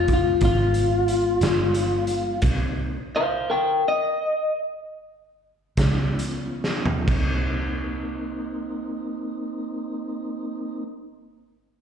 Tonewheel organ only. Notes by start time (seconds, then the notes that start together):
Already playing: G#3 B3 F4
2.43 A#3 C4 D#4
5.77 B3 C#4 F4
7.06 A#3 C4 D#4